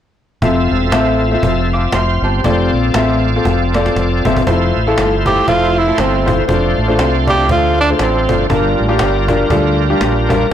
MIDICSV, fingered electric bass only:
0, 0, Header, 1, 2, 480
1, 0, Start_track
1, 0, Key_signature, -1, "major"
1, 0, Tempo, 504626
1, 402, Time_signature, 4, 2, 24, 8
1, 10019, End_track
2, 0, Start_track
2, 0, Title_t, "Fingered electric bass"
2, 0, Program_c, 0, 33
2, 404, Note_on_c, 0, 29, 99
2, 637, Note_off_c, 0, 29, 0
2, 678, Note_on_c, 0, 28, 85
2, 852, Note_off_c, 0, 28, 0
2, 873, Note_on_c, 0, 33, 72
2, 1286, Note_off_c, 0, 33, 0
2, 1356, Note_on_c, 0, 29, 91
2, 1768, Note_off_c, 0, 29, 0
2, 1833, Note_on_c, 0, 29, 74
2, 2072, Note_off_c, 0, 29, 0
2, 2114, Note_on_c, 0, 31, 89
2, 2290, Note_off_c, 0, 31, 0
2, 2326, Note_on_c, 0, 29, 106
2, 2559, Note_off_c, 0, 29, 0
2, 2600, Note_on_c, 0, 34, 84
2, 2774, Note_off_c, 0, 34, 0
2, 2802, Note_on_c, 0, 33, 74
2, 3212, Note_off_c, 0, 33, 0
2, 3285, Note_on_c, 0, 29, 80
2, 3694, Note_off_c, 0, 29, 0
2, 3764, Note_on_c, 0, 29, 75
2, 3999, Note_off_c, 0, 29, 0
2, 4043, Note_on_c, 0, 31, 82
2, 4217, Note_off_c, 0, 31, 0
2, 4250, Note_on_c, 0, 29, 107
2, 4482, Note_off_c, 0, 29, 0
2, 4529, Note_on_c, 0, 33, 77
2, 4700, Note_off_c, 0, 33, 0
2, 4731, Note_on_c, 0, 31, 80
2, 5137, Note_off_c, 0, 31, 0
2, 5213, Note_on_c, 0, 29, 80
2, 5618, Note_off_c, 0, 29, 0
2, 5690, Note_on_c, 0, 31, 94
2, 6096, Note_off_c, 0, 31, 0
2, 6170, Note_on_c, 0, 29, 110
2, 6402, Note_off_c, 0, 29, 0
2, 6447, Note_on_c, 0, 33, 88
2, 6662, Note_off_c, 0, 33, 0
2, 6662, Note_on_c, 0, 36, 79
2, 7131, Note_off_c, 0, 36, 0
2, 7131, Note_on_c, 0, 38, 68
2, 7536, Note_off_c, 0, 38, 0
2, 7610, Note_on_c, 0, 33, 75
2, 7890, Note_off_c, 0, 33, 0
2, 7890, Note_on_c, 0, 31, 83
2, 8060, Note_off_c, 0, 31, 0
2, 8085, Note_on_c, 0, 31, 105
2, 8319, Note_off_c, 0, 31, 0
2, 8375, Note_on_c, 0, 33, 77
2, 8542, Note_off_c, 0, 33, 0
2, 8572, Note_on_c, 0, 31, 82
2, 8976, Note_off_c, 0, 31, 0
2, 9035, Note_on_c, 0, 38, 79
2, 9446, Note_off_c, 0, 38, 0
2, 9520, Note_on_c, 0, 34, 74
2, 9928, Note_off_c, 0, 34, 0
2, 10019, End_track
0, 0, End_of_file